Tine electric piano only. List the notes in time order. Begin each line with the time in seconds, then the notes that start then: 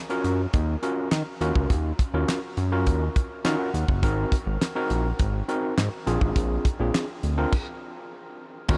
0.10 C#4 F4 F#4 A#4
0.82 C#4 F4 F#4 A#4
1.41 C#4 F4 F#4 A#4
2.14 C#4 F4 F#4 A#4
2.72 C#4 F4 F#4 A#4
3.45 C#4 F4 F#4 A#4 A#5
3.60 F#5
4.03 C4 D#4 F#4 A#4
4.75 C4 D#4 F#4 A#4
5.48 C4 D#4 F#4 A#4
6.07 C4 D4 F4 G#4
6.80 C4 D4 F4 G#4
7.38 C4 D4 F4 A#4
8.69 C#4 F4 F#4 A#4